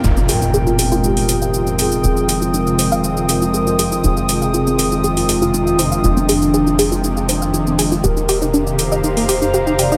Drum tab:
HH |--o---o--oo---o-|--o---o---o---o-|--o---o--oo---o-|--o---o---o---o-|
SH |xxxxxxxxxxxxxxxx|xxxxxxxxxxxxxxxx|xxxxxxxxxxxxxxxx|xxxxxxxxxxxxxxxx|

HH |--o---o--oo---o-|
SH |xxxxxxxxxxxxxxxx|